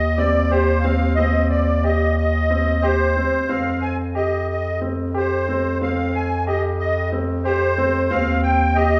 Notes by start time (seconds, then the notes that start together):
Already playing: D#2 D#5
0.16 C4 D5
0.49 G4 C5
0.81 C4 F5
1.15 C4 D#5
1.50 D5
1.84 G4 D#5
2.17 D#5
2.50 C4
2.82 G4 C5
3.17 C4
3.48 F2 C4 F5
3.81 G#5
4.15 G4 D#5
4.49 D#5
4.81 C4
5.14 G4 C5
5.48 C4
5.81 C4 F5
6.14 G#5
6.47 G4 D#5
6.79 D#5
7.12 C4
7.44 G4 C5
7.78 C4
8.10 D#2 C4 F5
8.43 G5
8.75 G4 D#5